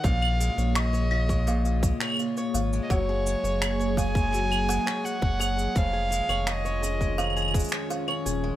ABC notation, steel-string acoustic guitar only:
X:1
M:4/4
L:1/16
Q:1/4=84
K:F#
V:1 name="Steel-string acoustic guitar"
A,, E G, c E c E G, A,, E G, c E c E G, | F, G G, c G c G G, F, G G, c G c G G, | E,, G G, c2 c G G, E,, G G, c G c G G, |]